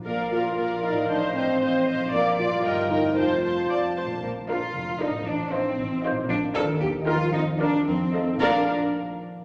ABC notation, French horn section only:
X:1
M:2/4
L:1/8
Q:1/4=115
K:Bb
V:1 name="French horn section"
B, F2 E | D C2 z | B, F2 E | F3 z |
z [F,D] z [F,D] | z [F,E] z [F,E] | z [F,D] z [B,E] | z [B,D] z [A,E] |
[B,F] z3 |]